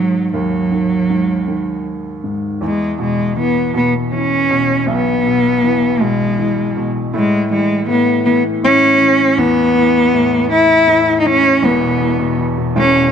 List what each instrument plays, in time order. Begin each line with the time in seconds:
Already playing: grand piano G#2 D#3 D#4, cello F#3
0.34 grand piano D#2, cello F#3
0.71 grand piano D#3
1.10 grand piano G#2
1.48 grand piano D#3
2.24 grand piano G#2
2.61 grand piano E2, cello G#3
2.99 grand piano B2, cello G#3
3.37 grand piano E3, cello B3
3.74 grand piano B2, cello B3
4.12 grand piano E3, cello C#4
4.50 grand piano B2
4.88 grand piano B1, cello B3
5.26 grand piano B2
5.63 grand piano E3
6.00 grand piano B2, cello G#3
6.39 grand piano E3
6.77 grand piano B2
7.14 grand piano A2, cello G#3
7.51 grand piano E3, cello G#3
7.88 grand piano A2, cello B3
8.25 grand piano E3, cello B3
8.63 grand piano A2, cello C#4
9.01 grand piano E3
9.38 grand piano E2, cello B3
9.76 grand piano E3
10.13 grand piano A2
10.50 grand piano E3, cello E4
10.88 grand piano A2
11.20 cello D#4
11.25 grand piano E3, cello C#4
11.62 grand piano E1 E2, cello B3
11.81 grand piano B2
12.00 grand piano E3
12.19 grand piano B2
12.37 grand piano E3
12.57 grand piano B2
12.76 grand piano E1 E2, cello C#4
12.96 grand piano B2